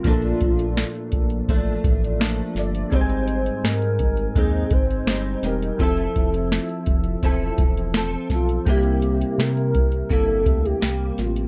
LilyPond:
<<
  \new Staff \with { instrumentName = "Soft synth lead" } { \time 4/4 \key bes \lydian \tempo 4 = 84 f'2~ f'8 r4 d''8 | c''4 bes'4 aes'8 c''4 bes'8 | a'4. r2 f'8 | g'4 bes'4 a'8. g'8. f'8 | }
  \new Staff \with { instrumentName = "Synth keys" } { \time 4/4 \key bes \lydian <f bes d' a'>2. <f bes d' a'>4 | <aes c' ees' g' aes''>2.~ <aes c' ees' g' aes''>8 <g c' ees' g'>8 | <f c' a' e''>1 | <g bes c' g'>1 | }
  \new Staff \with { instrumentName = "Clean electric guitar" } { \time 4/4 \key bes \lydian <bes, f a d'>2 <f a d'>4 <f a d'>4 | <aes, g c' ees'>2 <aes, c' ees'>4 <g c' ees'>4 | <f c' e' a'>2 <f c' e' a'>4 <f c' a'>4 | <c g bes e'>2 <c g bes e'>4 <c g bes>4 | }
  \new Staff \with { instrumentName = "Analog synth bass" } { \clef bass \time 4/4 \key bes \lydian bes,,8 bes,,8. r16 bes,,8 a,,8 a,,4 g,,8 | aes,,4 aes,8 aes,,8 ees,8 aes,,8 g,,8 e,,8 | f,,8 f,,8. r16 f,,8 e,,8 e,,4 ces,8 | c,4 c8 c,8 g,,8 d,8 c,8 a,,8 | }
  \new DrumStaff \with { instrumentName = "Drums" } \drummode { \time 4/4 <hh bd>16 hh16 <hh bd>16 hh16 <hh sn>16 hh16 <hh bd>16 hh16 <hh bd>8 <hh bd>16 hh16 <hh sn>8 <hh sn>16 hh16 | <hh bd>16 hh16 hh16 hh16 <hh sn>16 hh16 <hh bd>16 hh16 <hh bd>8 <hh bd>16 hh16 <hh sn>8 <hh sn>16 hh16 | <hh bd>16 hh16 <hh bd>16 hh16 <hh sn>16 hh16 <hh bd>16 hh16 <hh bd>8 <hh bd>16 hh16 <hh sn>8 <hh bd sn>16 hh16 | <hh bd>16 hh16 hh16 hh16 <hh sn>16 hh16 <hh bd>16 hh16 <hh bd>8 <hh bd>16 hh16 <hh sn>8 <hh sn>16 hh16 | }
>>